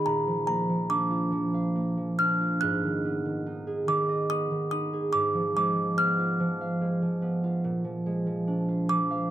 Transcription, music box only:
0, 0, Header, 1, 2, 480
1, 0, Start_track
1, 0, Tempo, 852273
1, 28, Time_signature, 3, 2, 24, 8
1, 1948, Tempo, 835655
1, 5306, End_track
2, 0, Start_track
2, 0, Title_t, "Music box"
2, 0, Program_c, 0, 10
2, 32, Note_on_c, 0, 82, 85
2, 259, Note_off_c, 0, 82, 0
2, 266, Note_on_c, 0, 82, 66
2, 506, Note_on_c, 0, 86, 76
2, 511, Note_off_c, 0, 82, 0
2, 1207, Note_off_c, 0, 86, 0
2, 1232, Note_on_c, 0, 89, 77
2, 1468, Note_on_c, 0, 90, 85
2, 1479, Note_off_c, 0, 89, 0
2, 2191, Note_on_c, 0, 86, 74
2, 2209, Note_off_c, 0, 90, 0
2, 2413, Note_off_c, 0, 86, 0
2, 2430, Note_on_c, 0, 87, 86
2, 2653, Note_off_c, 0, 87, 0
2, 2668, Note_on_c, 0, 87, 77
2, 2906, Note_on_c, 0, 86, 86
2, 2915, Note_off_c, 0, 87, 0
2, 3151, Note_off_c, 0, 86, 0
2, 3158, Note_on_c, 0, 86, 75
2, 3379, Note_off_c, 0, 86, 0
2, 3396, Note_on_c, 0, 89, 77
2, 4091, Note_off_c, 0, 89, 0
2, 5070, Note_on_c, 0, 86, 79
2, 5306, Note_off_c, 0, 86, 0
2, 5306, End_track
0, 0, End_of_file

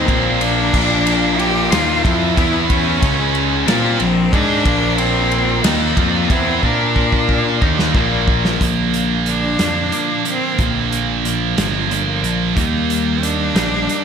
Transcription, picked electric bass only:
0, 0, Header, 1, 2, 480
1, 0, Start_track
1, 0, Key_signature, -2, "major"
1, 0, Tempo, 657174
1, 532, Time_signature, 6, 3, 24, 8
1, 6284, Key_signature, -2, "major"
1, 10258, End_track
2, 0, Start_track
2, 0, Title_t, "Picked electric bass"
2, 0, Program_c, 0, 34
2, 64, Note_on_c, 0, 34, 88
2, 508, Note_off_c, 0, 34, 0
2, 536, Note_on_c, 0, 34, 93
2, 1223, Note_off_c, 0, 34, 0
2, 1254, Note_on_c, 0, 39, 94
2, 1475, Note_off_c, 0, 39, 0
2, 1494, Note_on_c, 0, 41, 85
2, 1714, Note_off_c, 0, 41, 0
2, 1735, Note_on_c, 0, 40, 98
2, 2181, Note_off_c, 0, 40, 0
2, 2206, Note_on_c, 0, 37, 94
2, 2656, Note_off_c, 0, 37, 0
2, 2686, Note_on_c, 0, 46, 91
2, 2909, Note_off_c, 0, 46, 0
2, 2925, Note_on_c, 0, 34, 80
2, 3148, Note_off_c, 0, 34, 0
2, 3164, Note_on_c, 0, 44, 108
2, 3387, Note_off_c, 0, 44, 0
2, 3398, Note_on_c, 0, 34, 91
2, 4091, Note_off_c, 0, 34, 0
2, 4123, Note_on_c, 0, 39, 96
2, 4346, Note_off_c, 0, 39, 0
2, 4355, Note_on_c, 0, 41, 97
2, 4582, Note_off_c, 0, 41, 0
2, 4600, Note_on_c, 0, 40, 106
2, 4824, Note_off_c, 0, 40, 0
2, 4844, Note_on_c, 0, 46, 94
2, 5534, Note_off_c, 0, 46, 0
2, 5566, Note_on_c, 0, 39, 91
2, 5788, Note_off_c, 0, 39, 0
2, 5803, Note_on_c, 0, 34, 104
2, 6254, Note_off_c, 0, 34, 0
2, 6287, Note_on_c, 0, 34, 92
2, 6977, Note_off_c, 0, 34, 0
2, 7009, Note_on_c, 0, 41, 85
2, 7235, Note_off_c, 0, 41, 0
2, 7734, Note_on_c, 0, 34, 85
2, 8423, Note_off_c, 0, 34, 0
2, 8456, Note_on_c, 0, 31, 90
2, 8908, Note_off_c, 0, 31, 0
2, 8932, Note_on_c, 0, 34, 88
2, 9159, Note_off_c, 0, 34, 0
2, 9176, Note_on_c, 0, 39, 93
2, 9867, Note_off_c, 0, 39, 0
2, 9896, Note_on_c, 0, 34, 84
2, 10123, Note_off_c, 0, 34, 0
2, 10258, End_track
0, 0, End_of_file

